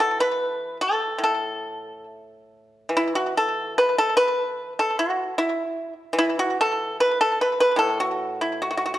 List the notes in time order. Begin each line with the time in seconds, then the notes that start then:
Already playing: E3
0.00 A4
0.20 B4
0.81 A4
1.18 A2
1.24 A4
2.89 E3
2.97 E4
3.15 F#4
3.37 A4
3.78 B4
3.98 A4
4.17 B4
4.79 A4
4.99 F#4
5.38 E4
6.13 E3
6.19 E4
6.39 F#4
6.61 A4
7.00 B4
7.21 A4
7.41 B4
7.60 B4
7.76 A2 A4
8.00 F#4
8.41 E4
8.62 F#4
8.71 F#4
8.77 F#4
8.86 F#4
8.94 F#4